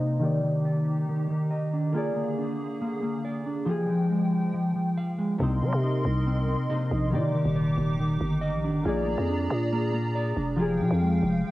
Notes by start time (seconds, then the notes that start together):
Already playing: C3 A#3 C4 D#4 C5 D#5
0.01 D#4
0.19 D#3 A#3 D#4 G4
0.24 D5
0.44 D#3
0.65 D5
1.09 D#3
1.30 D#3
1.51 D#5
1.74 D4
1.92 D3 A#3 F4 G#4
1.97 D5
2.16 A#3
2.38 D4
2.82 A#3
3.03 A#3
3.25 D5
3.46 D4
3.65 F3 G#3 F4 G4 G5
3.70 G#4
3.89 F3
4.11 G#3
4.54 F3
4.76 F3
4.97 F5
5.18 G#3
5.38 C2 C3 A#3 C4 D#4 A#4 D#5 C6
5.43 C5
5.62 G3 C4
5.73 C3
5.83 D#4
6.05 C2
6.27 C4
6.48 C4
6.69 C3 A#3 D#4 C5 D#5
6.91 A#1 D#4
7.10 A#2 D#3 A#3 D#4 G4 D6
7.15 D5
7.34 D#3
7.45 D#1
7.56 D5
7.78 D#1
8.00 D#3
8.21 G1 D#3
8.41 D#5
8.53 A#1
8.64 D4
8.69 G1
8.83 A#1 A#3 F4 G#4 D5 A#5
8.88 D5
9.07 A#3
9.18 F2
9.29 D4
9.50 A#2
9.72 A#3
9.93 A#3
10.15 D5
10.37 F1 D4
10.56 F3 F4 G4 F5 G5
10.61 G#4
10.80 C3 F3
10.91 F2
11.02 G#3
11.23 F1
11.44 F3